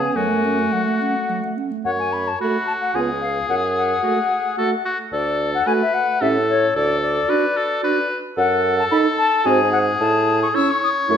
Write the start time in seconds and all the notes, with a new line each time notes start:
Already playing: B3 G#4
0.01 C#4 G#5
0.15 F#2 F#3 A3 F#4 G#5
0.30 A3
0.44 C#4
0.58 A3
0.72 F#3 F#5
0.87 A3
1.01 C#4
1.15 A3
1.29 F#3
1.43 A3
1.57 C#4
1.71 A3
1.85 F#2 C#5 F#5
1.99 G#5
2.13 B5
2.28 A5
2.40 A3 F#4 B5
2.67 A5
2.81 F#5
2.94 C#2 B3 F4 G#4 G#5
3.21 F5
3.49 F#2 F#5
3.76 F#5
4.03 A3 F#4
4.57 A3 F#4 A4
4.85 F#4
5.12 D2 A4 D5
5.54 F#5
5.66 A3 F#4 B4 G#5
5.82 E5
5.94 F#5
6.21 A2 C#4 G4 A4 E5
6.49 C#5
6.75 D2 A4 D5
7.01 D5
7.28 D4 F#4 B4
7.57 A4
7.82 D4 F#4 B4
8.37 F#2 A4 F#5
8.79 A5
8.91 D#4 A4 B5
9.18 A5
9.44 G#2 C4 F#4 G#4 G#5
9.72 F#5
10.00 A2 A5
10.43 C#6
10.54 C#4 E4 C#5 E6
10.70 C#6
10.83 D#6
11.09 F#2 A3 E4 C#6